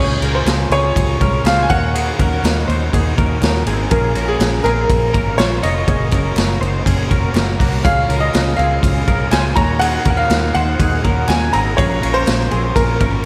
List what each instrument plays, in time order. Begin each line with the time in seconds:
Already playing: fingered electric bass C#2, overdriven electric guitar C#3, transistor combo organ G#3 C#4, clean electric guitar G#4, upright piano C#5, glockenspiel C#6
0.00 overdriven electric guitar G#3 C#4 F4 G#4, clean electric guitar C#4, transistor combo organ F4 G#4
0.20 fingered electric bass C#2, transistor combo organ G#3 C#4 F4 G#4, clean electric guitar C#4 A#4, ride
0.34 overdriven electric guitar F4 G#4, upright piano C5, glockenspiel C6
0.46 fingered electric bass C#2, transistor combo organ G#3 C#4 F4 G#4, snare, clap, ride
0.70 fingered electric bass C#2, clean electric guitar C3 G#4, transistor combo organ G#3 C#4 F4 G#4, upright piano C#5, glockenspiel C#6, ride
0.95 fingered electric bass C#2, transistor combo organ G#3 C#4 F4 A#4, kick, ride
1.19 fingered electric bass C2, transistor combo organ G#3 C#4 F4 G#4, overdriven electric guitar G#3 C#4 F4 G#4, clean electric guitar C#4 A#4, kick, ride
1.44 fingered electric bass C#2, transistor combo organ G#3 C#4 F4 G#4, overdriven electric guitar G#3 C#4 F4 G#4, clean electric guitar F4 C5, upright piano F5, glockenspiel F6, snare, clap, ride
1.62 upright piano G#5, glockenspiel G#6
1.69 fingered electric bass D#2, transistor combo organ A#3 D#4 F#4 A#4, overdriven electric guitar A#3 D#4 F#4 A#4, clean electric guitar F#4 C#5, upright piano F#5, glockenspiel F#6, kick, ride
1.94 overdriven electric guitar D#3 A#3 D#4 F#4 A#4, clean electric guitar D#4 G#4, ride
2.18 fingered electric bass D#2, transistor combo organ A#3 D#4 F#4 A#4, clean electric guitar C#4 A#4, kick, ride
2.31 overdriven electric guitar D#4 F#4 A#4
2.43 fingered electric bass D#2, transistor combo organ A#3 D#4 F#4 A#4, snare, clap, ride
2.67 fingered electric bass D#2, transistor combo organ A#3 D#4 F#4 C#5, clean electric guitar D#4 C5, ride
2.93 fingered electric bass D#2, transistor combo organ A#3 D#4 F#4 A#4, clean electric guitar D#4 G#4, kick, ride
3.17 fingered electric bass D#2, overdriven electric guitar A#3 D#4 F#4 A#4, transistor combo organ A#3 D#4 F#4 A#4, clean electric guitar C#4 A#4, kick, ride
3.42 fingered electric bass D#2, transistor combo organ A#3 D#4 F#4 A#4, overdriven electric guitar A#3 D#4 F#4 A#4, snare, clap, ride
3.66 fingered electric bass G#1, overdriven electric guitar A#3 D#4 F#4 A#4, transistor combo organ A#3 D#4 F#4 A#4, clean electric guitar C4 G#4, ride
3.89 fingered electric bass A#1, overdriven electric guitar A#2 F3 A#3 C#4 F4 A#4, transistor combo organ A#3 C#4 F4, clean electric guitar C#4 G#4, upright piano A#4, glockenspiel A#5, kick, ride
3.93 transistor combo organ A#4
4.15 fingered electric bass A#1, transistor combo organ A#3 C#4 F4 A#4, clean electric guitar C#4 A#4, ride
4.26 overdriven electric guitar F4 A#4, upright piano G#4, glockenspiel G#5
4.30 overdriven electric guitar A#3 C#4
4.39 fingered electric bass A#1, transistor combo organ A#3 C#4 F4 G#4, snare, clap, ride
4.63 fingered electric bass A#1, transistor combo organ A#3 C#4, clean electric guitar C4 G#4, upright piano A#4, glockenspiel A#5, ride
4.67 transistor combo organ F4 A#4
4.89 fingered electric bass A#1, transistor combo organ A#3 C#4 F4 A#4, kick, ride
5.13 fingered electric bass G#1, overdriven electric guitar A#3 C#4 F4 A#4, transistor combo organ A#3 C#4 F4 A#4, clean electric guitar C#4 A#4, kick, ride
5.37 fingered electric bass A#1, transistor combo organ A#3 C#4 F4 A#4, overdriven electric guitar A#3 C#4 F4 A#4, clean electric guitar F4 C5, upright piano C#5, glockenspiel C#6, snare, clap, ride
5.62 fingered electric bass F1, transistor combo organ A#3 C#4 F4 A#4, overdriven electric guitar A#3 C#4 F4 A#4, clean electric guitar F4 C#5, upright piano D#5, glockenspiel D#6, ride
5.86 fingered electric bass F#1, overdriven electric guitar F#2 F#3 A#3 C#4 F#4 A#4, transistor combo organ A#3 C#4 F#4 A#4, clean electric guitar C#4 G#4, kick, ride
6.11 fingered electric bass F#1, transistor combo organ A#3 C#4 F#4 G#4, clean electric guitar C#4 A#4, kick, clap, ride
6.24 overdriven electric guitar A#3 C#4 F#4 A#4
6.35 fingered electric bass F#1, transistor combo organ A#3 C#4 F#4 A#4, snare, clap, ride
6.58 fingered electric bass F#1, transistor combo organ A#3 C#4 F#4 A#4, clean electric guitar D#4 C5
6.62 ride
6.85 fingered electric bass F#1, transistor combo organ A#3 C#4 F#4 A#4, clean electric guitar C#4 G#4, kick, ride
7.09 fingered electric bass F1, transistor combo organ A#3 C#4 F#4 C5, overdriven electric guitar A#3 C#4 F#4 A#4, clean electric guitar C#4 A#4, kick, ride
7.34 fingered electric bass F#1, transistor combo organ A#3 C#4 F#4 A#4 A#5, overdriven electric guitar A#3 C#4 F#4 A#4, snare, clap, ride
7.58 fingered electric bass C2, transistor combo organ A#3 C#4 F#4 A#4, overdriven electric guitar A#3 C#4 F#4, clean electric guitar A#3 F#4, kick, open hi-hat, ride
7.62 overdriven electric guitar A#4
7.82 fingered electric bass C#2, overdriven electric guitar C#3 F3 G#3 C#4 F4 C#5, transistor combo organ G#3 C#4 F4 G#4, clean electric guitar C#4 G#4, upright piano F5, glockenspiel F6, kick, hi-hat pedal, ride
8.08 fingered electric bass C#2, transistor combo organ G#3 C#4 F4 A#4, clean electric guitar C#4 A#4, ride
8.20 overdriven electric guitar G#3 C#4 F4, upright piano D#5, glockenspiel D#6
8.32 fingered electric bass C#2, transistor combo organ G#3 C#4 F4 G#4, snare, clap, ride
8.57 fingered electric bass C#2, transistor combo organ G#3 C#4 F4 A#4, clean electric guitar C4 G#4, upright piano F5, glockenspiel F6, ride
8.80 fingered electric bass C#2, transistor combo organ G#3 C#4 F4 G#4, kick, ride
9.05 fingered electric bass C2, transistor combo organ G#3 C#4 F4 G#4, overdriven electric guitar G#3 C#4, clean electric guitar C#4 A#4, kick, ride
9.09 overdriven electric guitar F4 C#5
9.30 fingered electric bass C#2, transistor combo organ G#3 C#4 F4 G#4, overdriven electric guitar G#3 C#4 F4 C#5, clean electric guitar F4 C5, upright piano G#5, glockenspiel G#6, snare, clap, ride
9.54 fingered electric bass D#2, transistor combo organ A#3 D#4 F#4 A#4, overdriven electric guitar A#3 D#4 F#4, clean electric guitar C#5, upright piano A#5, glockenspiel A#6, kick, ride
9.58 clean electric guitar F#4, overdriven electric guitar A#4
9.79 overdriven electric guitar D#3 A#3 D#4 F#4 A#4, clean electric guitar D#4 G#4, upright piano F#5, glockenspiel F#6, ride
10.04 fingered electric bass D#2, transistor combo organ A#3 D#4 F#4 A#4, clean electric guitar C#4 A#4, kick, ride
10.09 upright piano F#5, glockenspiel F#6
10.17 overdriven electric guitar D#4 F#4 A#4, upright piano F5, glockenspiel F6
10.29 fingered electric bass D#2, transistor combo organ A#3 D#4 F#4 C5, snare, clap, ride
10.54 fingered electric bass D#2, transistor combo organ A#3 D#4 F#4 C5, clean electric guitar D#4 C5, upright piano F#5, glockenspiel F#6, ride
10.79 fingered electric bass D#2, transistor combo organ A#3 D#4 F#4 G#4, clean electric guitar D#4 G#4, kick, ride
11.02 fingered electric bass D#2, overdriven electric guitar A#3 D#4 F#4 A#4, transistor combo organ A#3 D#4 F#4 A#4, clean electric guitar C#4 A#4, kick, ride
11.27 fingered electric bass D#2, transistor combo organ A#3 D#4 F#4 A#4, overdriven electric guitar A#3 D#4 F#4 A#4, upright piano G#5, glockenspiel G#6, snare, clap, ride
11.52 fingered electric bass G#1, overdriven electric guitar A#3 D#4 F#4 A#4, transistor combo organ A#3 D#4 F#4 A#4, clean electric guitar C4 G#4, upright piano A#5, glockenspiel A#6, ride
11.77 fingered electric bass A#1, overdriven electric guitar A#2 F3 A#3 C#4 F4 A#4, transistor combo organ A#3 C#4 F4 A#4, clean electric guitar C#4 G#4, upright piano C#5, glockenspiel C#6, kick, ride
12.01 fingered electric bass A#1, transistor combo organ A#3 C#4 F4 C#5, clean electric guitar C#4 A#4, ride
12.14 overdriven electric guitar A#3 C#4 F4 A#4, upright piano C5, glockenspiel C6
12.26 fingered electric bass A#1, transistor combo organ A#3 C#4 F4 C#5, snare, clap, ride
12.51 fingered electric bass A#1, transistor combo organ A#3 C#4 F4 A#4, clean electric guitar C4 G#4, ride
12.75 fingered electric bass A#1, transistor combo organ A#3 C#4 F4 C#5, upright piano A#4, glockenspiel A#5, kick, ride
12.99 fingered electric bass G#1, overdriven electric guitar A#3 C#4 F4 A#4, transistor combo organ A#3 C#4 F4 A#4, clean electric guitar C#4 A#4, kick, ride